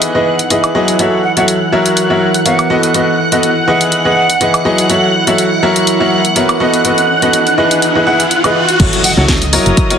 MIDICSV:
0, 0, Header, 1, 9, 480
1, 0, Start_track
1, 0, Tempo, 487805
1, 977, Time_signature, 4, 2, 24, 8
1, 9825, End_track
2, 0, Start_track
2, 0, Title_t, "String machine"
2, 0, Program_c, 0, 50
2, 0, Note_on_c, 0, 78, 84
2, 0, Note_on_c, 0, 90, 80
2, 964, Note_off_c, 0, 78, 0
2, 965, Note_off_c, 0, 90, 0
2, 976, Note_on_c, 0, 78, 84
2, 977, Note_on_c, 0, 90, 85
2, 8658, Note_on_c, 0, 75, 91
2, 8658, Note_on_c, 0, 87, 90
2, 8667, Note_off_c, 0, 78, 0
2, 8667, Note_off_c, 0, 90, 0
2, 9825, Note_off_c, 0, 75, 0
2, 9825, Note_off_c, 0, 87, 0
2, 9825, End_track
3, 0, Start_track
3, 0, Title_t, "Ambient pad"
3, 0, Program_c, 1, 92
3, 0, Note_on_c, 1, 64, 81
3, 1272, Note_on_c, 1, 78, 83
3, 2657, Note_off_c, 1, 64, 0
3, 3049, Note_off_c, 1, 78, 0
3, 3617, Note_on_c, 1, 64, 75
3, 3728, Note_on_c, 1, 80, 77
3, 5109, Note_on_c, 1, 78, 91
3, 5209, Note_off_c, 1, 80, 0
3, 6497, Note_off_c, 1, 64, 0
3, 6888, Note_off_c, 1, 78, 0
3, 9825, End_track
4, 0, Start_track
4, 0, Title_t, "Flute"
4, 0, Program_c, 2, 73
4, 1217, Note_on_c, 2, 78, 83
4, 1300, Note_off_c, 2, 78, 0
4, 1348, Note_on_c, 2, 78, 75
4, 1418, Note_off_c, 2, 78, 0
4, 2416, Note_on_c, 2, 78, 88
4, 2708, Note_off_c, 2, 78, 0
4, 3617, Note_on_c, 2, 78, 89
4, 3754, Note_off_c, 2, 78, 0
4, 3988, Note_on_c, 2, 78, 90
4, 4467, Note_off_c, 2, 78, 0
4, 8897, Note_on_c, 2, 78, 90
4, 8980, Note_off_c, 2, 78, 0
4, 9028, Note_on_c, 2, 78, 76
4, 9098, Note_off_c, 2, 78, 0
4, 9825, End_track
5, 0, Start_track
5, 0, Title_t, "Grand piano"
5, 0, Program_c, 3, 0
5, 0, Note_on_c, 3, 52, 93
5, 0, Note_on_c, 3, 64, 86
5, 0, Note_on_c, 3, 68, 85
5, 0, Note_on_c, 3, 71, 88
5, 0, Note_on_c, 3, 75, 106
5, 116, Note_off_c, 3, 52, 0
5, 116, Note_off_c, 3, 64, 0
5, 116, Note_off_c, 3, 68, 0
5, 116, Note_off_c, 3, 71, 0
5, 116, Note_off_c, 3, 75, 0
5, 147, Note_on_c, 3, 52, 81
5, 147, Note_on_c, 3, 64, 72
5, 147, Note_on_c, 3, 68, 74
5, 147, Note_on_c, 3, 71, 73
5, 147, Note_on_c, 3, 75, 88
5, 334, Note_off_c, 3, 52, 0
5, 334, Note_off_c, 3, 64, 0
5, 334, Note_off_c, 3, 68, 0
5, 334, Note_off_c, 3, 71, 0
5, 334, Note_off_c, 3, 75, 0
5, 497, Note_on_c, 3, 52, 72
5, 497, Note_on_c, 3, 64, 65
5, 497, Note_on_c, 3, 68, 66
5, 497, Note_on_c, 3, 71, 64
5, 497, Note_on_c, 3, 75, 79
5, 692, Note_off_c, 3, 52, 0
5, 692, Note_off_c, 3, 64, 0
5, 692, Note_off_c, 3, 68, 0
5, 692, Note_off_c, 3, 71, 0
5, 692, Note_off_c, 3, 75, 0
5, 737, Note_on_c, 3, 54, 89
5, 737, Note_on_c, 3, 64, 80
5, 737, Note_on_c, 3, 68, 87
5, 737, Note_on_c, 3, 71, 85
5, 737, Note_on_c, 3, 75, 98
5, 932, Note_off_c, 3, 54, 0
5, 932, Note_off_c, 3, 64, 0
5, 932, Note_off_c, 3, 68, 0
5, 932, Note_off_c, 3, 71, 0
5, 932, Note_off_c, 3, 75, 0
5, 977, Note_on_c, 3, 54, 72
5, 977, Note_on_c, 3, 66, 65
5, 977, Note_on_c, 3, 69, 66
5, 977, Note_on_c, 3, 73, 64
5, 977, Note_on_c, 3, 76, 82
5, 1172, Note_off_c, 3, 54, 0
5, 1172, Note_off_c, 3, 66, 0
5, 1172, Note_off_c, 3, 69, 0
5, 1172, Note_off_c, 3, 73, 0
5, 1172, Note_off_c, 3, 76, 0
5, 1347, Note_on_c, 3, 54, 76
5, 1347, Note_on_c, 3, 66, 70
5, 1347, Note_on_c, 3, 69, 70
5, 1347, Note_on_c, 3, 73, 72
5, 1347, Note_on_c, 3, 76, 82
5, 1534, Note_off_c, 3, 54, 0
5, 1534, Note_off_c, 3, 66, 0
5, 1534, Note_off_c, 3, 69, 0
5, 1534, Note_off_c, 3, 73, 0
5, 1534, Note_off_c, 3, 76, 0
5, 1697, Note_on_c, 3, 54, 95
5, 1697, Note_on_c, 3, 66, 85
5, 1697, Note_on_c, 3, 70, 85
5, 1697, Note_on_c, 3, 73, 85
5, 1697, Note_on_c, 3, 76, 105
5, 2036, Note_off_c, 3, 54, 0
5, 2036, Note_off_c, 3, 66, 0
5, 2036, Note_off_c, 3, 70, 0
5, 2036, Note_off_c, 3, 73, 0
5, 2036, Note_off_c, 3, 76, 0
5, 2067, Note_on_c, 3, 54, 80
5, 2067, Note_on_c, 3, 66, 73
5, 2067, Note_on_c, 3, 70, 77
5, 2067, Note_on_c, 3, 73, 75
5, 2067, Note_on_c, 3, 76, 89
5, 2254, Note_off_c, 3, 54, 0
5, 2254, Note_off_c, 3, 66, 0
5, 2254, Note_off_c, 3, 70, 0
5, 2254, Note_off_c, 3, 73, 0
5, 2254, Note_off_c, 3, 76, 0
5, 2417, Note_on_c, 3, 59, 72
5, 2417, Note_on_c, 3, 66, 66
5, 2417, Note_on_c, 3, 70, 65
5, 2417, Note_on_c, 3, 73, 65
5, 2417, Note_on_c, 3, 76, 79
5, 2612, Note_off_c, 3, 59, 0
5, 2612, Note_off_c, 3, 66, 0
5, 2612, Note_off_c, 3, 70, 0
5, 2612, Note_off_c, 3, 73, 0
5, 2612, Note_off_c, 3, 76, 0
5, 2657, Note_on_c, 3, 59, 90
5, 2657, Note_on_c, 3, 66, 84
5, 2657, Note_on_c, 3, 69, 85
5, 2657, Note_on_c, 3, 71, 83
5, 2657, Note_on_c, 3, 75, 102
5, 2852, Note_off_c, 3, 59, 0
5, 2852, Note_off_c, 3, 66, 0
5, 2852, Note_off_c, 3, 69, 0
5, 2852, Note_off_c, 3, 71, 0
5, 2852, Note_off_c, 3, 75, 0
5, 2897, Note_on_c, 3, 59, 73
5, 2897, Note_on_c, 3, 66, 68
5, 2897, Note_on_c, 3, 69, 67
5, 2897, Note_on_c, 3, 71, 65
5, 2897, Note_on_c, 3, 75, 80
5, 3092, Note_off_c, 3, 59, 0
5, 3092, Note_off_c, 3, 66, 0
5, 3092, Note_off_c, 3, 69, 0
5, 3092, Note_off_c, 3, 71, 0
5, 3092, Note_off_c, 3, 75, 0
5, 3267, Note_on_c, 3, 59, 79
5, 3267, Note_on_c, 3, 66, 71
5, 3267, Note_on_c, 3, 69, 70
5, 3267, Note_on_c, 3, 71, 70
5, 3268, Note_on_c, 3, 75, 84
5, 3454, Note_off_c, 3, 59, 0
5, 3454, Note_off_c, 3, 66, 0
5, 3454, Note_off_c, 3, 69, 0
5, 3454, Note_off_c, 3, 71, 0
5, 3454, Note_off_c, 3, 75, 0
5, 3617, Note_on_c, 3, 52, 94
5, 3617, Note_on_c, 3, 64, 89
5, 3617, Note_on_c, 3, 68, 89
5, 3617, Note_on_c, 3, 71, 86
5, 3617, Note_on_c, 3, 75, 104
5, 3956, Note_off_c, 3, 52, 0
5, 3956, Note_off_c, 3, 64, 0
5, 3956, Note_off_c, 3, 68, 0
5, 3956, Note_off_c, 3, 71, 0
5, 3956, Note_off_c, 3, 75, 0
5, 3987, Note_on_c, 3, 52, 81
5, 3987, Note_on_c, 3, 64, 75
5, 3987, Note_on_c, 3, 68, 75
5, 3987, Note_on_c, 3, 71, 75
5, 3987, Note_on_c, 3, 75, 90
5, 4174, Note_off_c, 3, 52, 0
5, 4174, Note_off_c, 3, 64, 0
5, 4174, Note_off_c, 3, 68, 0
5, 4174, Note_off_c, 3, 71, 0
5, 4174, Note_off_c, 3, 75, 0
5, 4336, Note_on_c, 3, 52, 70
5, 4336, Note_on_c, 3, 68, 66
5, 4336, Note_on_c, 3, 75, 81
5, 4337, Note_on_c, 3, 64, 69
5, 4337, Note_on_c, 3, 71, 67
5, 4532, Note_off_c, 3, 52, 0
5, 4532, Note_off_c, 3, 64, 0
5, 4532, Note_off_c, 3, 68, 0
5, 4532, Note_off_c, 3, 71, 0
5, 4532, Note_off_c, 3, 75, 0
5, 4576, Note_on_c, 3, 68, 86
5, 4577, Note_on_c, 3, 54, 91
5, 4577, Note_on_c, 3, 64, 81
5, 4577, Note_on_c, 3, 71, 87
5, 4577, Note_on_c, 3, 75, 105
5, 4772, Note_off_c, 3, 54, 0
5, 4772, Note_off_c, 3, 64, 0
5, 4772, Note_off_c, 3, 68, 0
5, 4772, Note_off_c, 3, 71, 0
5, 4772, Note_off_c, 3, 75, 0
5, 4817, Note_on_c, 3, 54, 73
5, 4817, Note_on_c, 3, 66, 69
5, 4817, Note_on_c, 3, 69, 67
5, 4817, Note_on_c, 3, 73, 67
5, 4817, Note_on_c, 3, 76, 82
5, 5012, Note_off_c, 3, 54, 0
5, 5012, Note_off_c, 3, 66, 0
5, 5012, Note_off_c, 3, 69, 0
5, 5012, Note_off_c, 3, 73, 0
5, 5012, Note_off_c, 3, 76, 0
5, 5187, Note_on_c, 3, 54, 74
5, 5187, Note_on_c, 3, 66, 73
5, 5187, Note_on_c, 3, 69, 68
5, 5187, Note_on_c, 3, 73, 71
5, 5187, Note_on_c, 3, 76, 87
5, 5374, Note_off_c, 3, 54, 0
5, 5374, Note_off_c, 3, 66, 0
5, 5374, Note_off_c, 3, 69, 0
5, 5374, Note_off_c, 3, 73, 0
5, 5374, Note_off_c, 3, 76, 0
5, 5537, Note_on_c, 3, 54, 93
5, 5537, Note_on_c, 3, 66, 84
5, 5537, Note_on_c, 3, 70, 90
5, 5537, Note_on_c, 3, 73, 87
5, 5537, Note_on_c, 3, 76, 107
5, 5876, Note_off_c, 3, 54, 0
5, 5876, Note_off_c, 3, 66, 0
5, 5876, Note_off_c, 3, 70, 0
5, 5876, Note_off_c, 3, 73, 0
5, 5876, Note_off_c, 3, 76, 0
5, 5907, Note_on_c, 3, 54, 86
5, 5907, Note_on_c, 3, 66, 76
5, 5907, Note_on_c, 3, 70, 73
5, 5907, Note_on_c, 3, 73, 73
5, 5907, Note_on_c, 3, 76, 94
5, 6094, Note_off_c, 3, 54, 0
5, 6094, Note_off_c, 3, 66, 0
5, 6094, Note_off_c, 3, 70, 0
5, 6094, Note_off_c, 3, 73, 0
5, 6094, Note_off_c, 3, 76, 0
5, 6257, Note_on_c, 3, 59, 70
5, 6257, Note_on_c, 3, 66, 70
5, 6257, Note_on_c, 3, 70, 69
5, 6257, Note_on_c, 3, 73, 70
5, 6257, Note_on_c, 3, 76, 79
5, 6452, Note_off_c, 3, 59, 0
5, 6452, Note_off_c, 3, 66, 0
5, 6452, Note_off_c, 3, 70, 0
5, 6452, Note_off_c, 3, 73, 0
5, 6452, Note_off_c, 3, 76, 0
5, 6497, Note_on_c, 3, 59, 89
5, 6497, Note_on_c, 3, 66, 86
5, 6497, Note_on_c, 3, 69, 82
5, 6497, Note_on_c, 3, 71, 84
5, 6497, Note_on_c, 3, 75, 102
5, 6692, Note_off_c, 3, 59, 0
5, 6692, Note_off_c, 3, 66, 0
5, 6692, Note_off_c, 3, 69, 0
5, 6692, Note_off_c, 3, 71, 0
5, 6692, Note_off_c, 3, 75, 0
5, 6737, Note_on_c, 3, 59, 73
5, 6737, Note_on_c, 3, 66, 68
5, 6737, Note_on_c, 3, 69, 68
5, 6737, Note_on_c, 3, 71, 69
5, 6737, Note_on_c, 3, 75, 82
5, 6932, Note_off_c, 3, 59, 0
5, 6932, Note_off_c, 3, 66, 0
5, 6932, Note_off_c, 3, 69, 0
5, 6932, Note_off_c, 3, 71, 0
5, 6932, Note_off_c, 3, 75, 0
5, 7107, Note_on_c, 3, 59, 76
5, 7107, Note_on_c, 3, 66, 70
5, 7107, Note_on_c, 3, 69, 68
5, 7107, Note_on_c, 3, 71, 72
5, 7107, Note_on_c, 3, 75, 85
5, 7294, Note_off_c, 3, 59, 0
5, 7294, Note_off_c, 3, 66, 0
5, 7294, Note_off_c, 3, 69, 0
5, 7294, Note_off_c, 3, 71, 0
5, 7294, Note_off_c, 3, 75, 0
5, 7456, Note_on_c, 3, 64, 88
5, 7457, Note_on_c, 3, 52, 96
5, 7457, Note_on_c, 3, 68, 85
5, 7457, Note_on_c, 3, 71, 88
5, 7457, Note_on_c, 3, 75, 105
5, 7795, Note_off_c, 3, 64, 0
5, 7796, Note_off_c, 3, 52, 0
5, 7796, Note_off_c, 3, 68, 0
5, 7796, Note_off_c, 3, 71, 0
5, 7796, Note_off_c, 3, 75, 0
5, 7827, Note_on_c, 3, 52, 81
5, 7827, Note_on_c, 3, 64, 77
5, 7827, Note_on_c, 3, 68, 75
5, 7827, Note_on_c, 3, 71, 77
5, 7827, Note_on_c, 3, 75, 90
5, 7915, Note_off_c, 3, 52, 0
5, 7915, Note_off_c, 3, 64, 0
5, 7915, Note_off_c, 3, 68, 0
5, 7915, Note_off_c, 3, 71, 0
5, 7915, Note_off_c, 3, 75, 0
5, 7937, Note_on_c, 3, 52, 92
5, 7937, Note_on_c, 3, 64, 79
5, 7937, Note_on_c, 3, 68, 80
5, 7937, Note_on_c, 3, 71, 81
5, 7937, Note_on_c, 3, 78, 103
5, 8066, Note_off_c, 3, 52, 0
5, 8066, Note_off_c, 3, 64, 0
5, 8066, Note_off_c, 3, 68, 0
5, 8066, Note_off_c, 3, 71, 0
5, 8066, Note_off_c, 3, 78, 0
5, 8306, Note_on_c, 3, 75, 94
5, 8307, Note_on_c, 3, 52, 84
5, 8307, Note_on_c, 3, 64, 77
5, 8307, Note_on_c, 3, 68, 76
5, 8307, Note_on_c, 3, 71, 76
5, 8416, Note_off_c, 3, 52, 0
5, 8416, Note_off_c, 3, 64, 0
5, 8416, Note_off_c, 3, 68, 0
5, 8416, Note_off_c, 3, 71, 0
5, 8416, Note_off_c, 3, 75, 0
5, 8657, Note_on_c, 3, 54, 79
5, 8657, Note_on_c, 3, 64, 69
5, 8657, Note_on_c, 3, 66, 72
5, 8657, Note_on_c, 3, 69, 74
5, 8657, Note_on_c, 3, 73, 88
5, 8852, Note_off_c, 3, 54, 0
5, 8852, Note_off_c, 3, 64, 0
5, 8852, Note_off_c, 3, 66, 0
5, 8852, Note_off_c, 3, 69, 0
5, 8852, Note_off_c, 3, 73, 0
5, 9026, Note_on_c, 3, 66, 74
5, 9026, Note_on_c, 3, 69, 75
5, 9027, Note_on_c, 3, 54, 83
5, 9027, Note_on_c, 3, 64, 75
5, 9027, Note_on_c, 3, 73, 90
5, 9214, Note_off_c, 3, 54, 0
5, 9214, Note_off_c, 3, 64, 0
5, 9214, Note_off_c, 3, 66, 0
5, 9214, Note_off_c, 3, 69, 0
5, 9214, Note_off_c, 3, 73, 0
5, 9376, Note_on_c, 3, 54, 106
5, 9377, Note_on_c, 3, 64, 95
5, 9377, Note_on_c, 3, 66, 92
5, 9377, Note_on_c, 3, 70, 97
5, 9377, Note_on_c, 3, 73, 112
5, 9715, Note_off_c, 3, 54, 0
5, 9716, Note_off_c, 3, 64, 0
5, 9716, Note_off_c, 3, 66, 0
5, 9716, Note_off_c, 3, 70, 0
5, 9716, Note_off_c, 3, 73, 0
5, 9746, Note_on_c, 3, 54, 88
5, 9746, Note_on_c, 3, 64, 78
5, 9746, Note_on_c, 3, 66, 81
5, 9746, Note_on_c, 3, 70, 82
5, 9746, Note_on_c, 3, 73, 97
5, 9825, Note_off_c, 3, 54, 0
5, 9825, Note_off_c, 3, 64, 0
5, 9825, Note_off_c, 3, 66, 0
5, 9825, Note_off_c, 3, 70, 0
5, 9825, Note_off_c, 3, 73, 0
5, 9825, End_track
6, 0, Start_track
6, 0, Title_t, "FM bass"
6, 0, Program_c, 4, 39
6, 8657, Note_on_c, 4, 30, 99
6, 8739, Note_off_c, 4, 30, 0
6, 9026, Note_on_c, 4, 37, 101
6, 9429, Note_off_c, 4, 37, 0
6, 9507, Note_on_c, 4, 30, 87
6, 9576, Note_off_c, 4, 30, 0
6, 9825, End_track
7, 0, Start_track
7, 0, Title_t, "Impact"
7, 0, Program_c, 5, 103
7, 8657, Note_on_c, 5, 60, 82
7, 9825, Note_off_c, 5, 60, 0
7, 9825, End_track
8, 0, Start_track
8, 0, Title_t, "Riser"
8, 0, Program_c, 6, 103
8, 4817, Note_on_c, 6, 60, 73
8, 8657, Note_off_c, 6, 60, 0
8, 9825, End_track
9, 0, Start_track
9, 0, Title_t, "Drums"
9, 16, Note_on_c, 9, 42, 59
9, 115, Note_off_c, 9, 42, 0
9, 386, Note_on_c, 9, 42, 46
9, 484, Note_off_c, 9, 42, 0
9, 496, Note_on_c, 9, 42, 59
9, 594, Note_off_c, 9, 42, 0
9, 627, Note_on_c, 9, 42, 31
9, 627, Note_on_c, 9, 76, 70
9, 725, Note_off_c, 9, 42, 0
9, 725, Note_off_c, 9, 76, 0
9, 866, Note_on_c, 9, 42, 46
9, 965, Note_off_c, 9, 42, 0
9, 976, Note_on_c, 9, 42, 62
9, 1074, Note_off_c, 9, 42, 0
9, 1346, Note_on_c, 9, 42, 47
9, 1444, Note_off_c, 9, 42, 0
9, 1456, Note_on_c, 9, 42, 59
9, 1555, Note_off_c, 9, 42, 0
9, 1826, Note_on_c, 9, 42, 47
9, 1925, Note_off_c, 9, 42, 0
9, 1937, Note_on_c, 9, 42, 57
9, 2035, Note_off_c, 9, 42, 0
9, 2307, Note_on_c, 9, 42, 45
9, 2405, Note_off_c, 9, 42, 0
9, 2417, Note_on_c, 9, 42, 61
9, 2515, Note_off_c, 9, 42, 0
9, 2547, Note_on_c, 9, 42, 32
9, 2547, Note_on_c, 9, 76, 72
9, 2646, Note_off_c, 9, 42, 0
9, 2646, Note_off_c, 9, 76, 0
9, 2787, Note_on_c, 9, 42, 47
9, 2886, Note_off_c, 9, 42, 0
9, 2897, Note_on_c, 9, 42, 62
9, 2995, Note_off_c, 9, 42, 0
9, 3267, Note_on_c, 9, 42, 50
9, 3366, Note_off_c, 9, 42, 0
9, 3377, Note_on_c, 9, 42, 61
9, 3475, Note_off_c, 9, 42, 0
9, 3747, Note_on_c, 9, 42, 49
9, 3845, Note_off_c, 9, 42, 0
9, 3857, Note_on_c, 9, 42, 60
9, 3955, Note_off_c, 9, 42, 0
9, 4227, Note_on_c, 9, 42, 46
9, 4326, Note_off_c, 9, 42, 0
9, 4337, Note_on_c, 9, 42, 61
9, 4436, Note_off_c, 9, 42, 0
9, 4467, Note_on_c, 9, 42, 34
9, 4467, Note_on_c, 9, 76, 75
9, 4566, Note_off_c, 9, 42, 0
9, 4566, Note_off_c, 9, 76, 0
9, 4708, Note_on_c, 9, 42, 47
9, 4806, Note_off_c, 9, 42, 0
9, 4817, Note_on_c, 9, 42, 65
9, 4916, Note_off_c, 9, 42, 0
9, 5187, Note_on_c, 9, 42, 49
9, 5286, Note_off_c, 9, 42, 0
9, 5298, Note_on_c, 9, 42, 65
9, 5396, Note_off_c, 9, 42, 0
9, 5667, Note_on_c, 9, 42, 51
9, 5766, Note_off_c, 9, 42, 0
9, 5777, Note_on_c, 9, 42, 63
9, 5876, Note_off_c, 9, 42, 0
9, 6147, Note_on_c, 9, 42, 52
9, 6245, Note_off_c, 9, 42, 0
9, 6257, Note_on_c, 9, 42, 63
9, 6356, Note_off_c, 9, 42, 0
9, 6387, Note_on_c, 9, 42, 35
9, 6387, Note_on_c, 9, 76, 79
9, 6486, Note_off_c, 9, 42, 0
9, 6486, Note_off_c, 9, 76, 0
9, 6628, Note_on_c, 9, 42, 50
9, 6726, Note_off_c, 9, 42, 0
9, 6737, Note_on_c, 9, 42, 68
9, 6836, Note_off_c, 9, 42, 0
9, 6867, Note_on_c, 9, 42, 37
9, 6966, Note_off_c, 9, 42, 0
9, 7107, Note_on_c, 9, 42, 49
9, 7205, Note_off_c, 9, 42, 0
9, 7217, Note_on_c, 9, 42, 66
9, 7315, Note_off_c, 9, 42, 0
9, 7347, Note_on_c, 9, 42, 35
9, 7445, Note_off_c, 9, 42, 0
9, 7587, Note_on_c, 9, 42, 53
9, 7686, Note_off_c, 9, 42, 0
9, 7698, Note_on_c, 9, 42, 66
9, 7796, Note_off_c, 9, 42, 0
9, 8067, Note_on_c, 9, 42, 50
9, 8165, Note_off_c, 9, 42, 0
9, 8177, Note_on_c, 9, 42, 66
9, 8275, Note_off_c, 9, 42, 0
9, 8307, Note_on_c, 9, 42, 36
9, 8307, Note_on_c, 9, 76, 75
9, 8405, Note_off_c, 9, 42, 0
9, 8405, Note_off_c, 9, 76, 0
9, 8547, Note_on_c, 9, 42, 52
9, 8645, Note_off_c, 9, 42, 0
9, 8657, Note_on_c, 9, 36, 120
9, 8657, Note_on_c, 9, 42, 84
9, 8657, Note_on_c, 9, 49, 109
9, 8755, Note_off_c, 9, 42, 0
9, 8755, Note_off_c, 9, 49, 0
9, 8756, Note_off_c, 9, 36, 0
9, 8787, Note_on_c, 9, 42, 56
9, 8885, Note_off_c, 9, 42, 0
9, 8896, Note_on_c, 9, 46, 104
9, 8995, Note_off_c, 9, 46, 0
9, 9136, Note_on_c, 9, 38, 126
9, 9136, Note_on_c, 9, 42, 86
9, 9137, Note_on_c, 9, 36, 119
9, 9234, Note_off_c, 9, 38, 0
9, 9235, Note_off_c, 9, 42, 0
9, 9236, Note_off_c, 9, 36, 0
9, 9266, Note_on_c, 9, 42, 54
9, 9364, Note_off_c, 9, 42, 0
9, 9376, Note_on_c, 9, 46, 94
9, 9474, Note_off_c, 9, 46, 0
9, 9506, Note_on_c, 9, 42, 39
9, 9605, Note_off_c, 9, 42, 0
9, 9616, Note_on_c, 9, 42, 78
9, 9617, Note_on_c, 9, 36, 117
9, 9714, Note_off_c, 9, 42, 0
9, 9715, Note_off_c, 9, 36, 0
9, 9746, Note_on_c, 9, 42, 55
9, 9825, Note_off_c, 9, 42, 0
9, 9825, End_track
0, 0, End_of_file